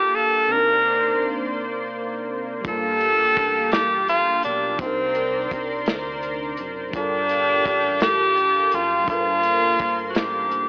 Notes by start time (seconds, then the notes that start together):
Already playing: G3 A#3 D4 F4 G4 A4 F5 A5
0.16 A4
0.48 C3 A#3 C4 C5 D5 C6
0.52 D4 D#4 A#4
0.57 A#4
2.61 G3 D4 F5 A5, kick, closed hi-hat
2.66 G1 F4 G4 A4
2.71 A#3
3.01 closed hi-hat
3.37 A1, kick, closed hi-hat
3.72 G4, snare, closed hi-hat
4.08 F4, closed hi-hat
4.43 B1 D4, closed hi-hat
4.76 C2 C3 C4 A#4 C5 D5 C6, kick, closed hi-hat
4.81 D4 D#4
4.86 A#4
5.15 closed hi-hat
5.51 C2, kick, closed hi-hat
5.86 D2, snare, closed hi-hat
6.23 closed hi-hat
6.57 F#1, closed hi-hat
6.90 G3 D4 G4 F5 G5 A5, kick, closed hi-hat
6.95 G1 D4 F4 A4
7.00 A#4
7.29 closed hi-hat
7.65 A1, kick, closed hi-hat
8.00 G4, snare, closed hi-hat
8.37 closed hi-hat
8.71 F#1 F4, closed hi-hat
9.04 G3 D4, kick
9.08 G1 A#3 F4 A4 C6, closed hi-hat
9.12 A#4 B4
9.20 C5
9.43 closed hi-hat
9.79 G1, kick, closed hi-hat
10.10 F#4
10.15 A1 G4, snare, closed hi-hat
10.51 closed hi-hat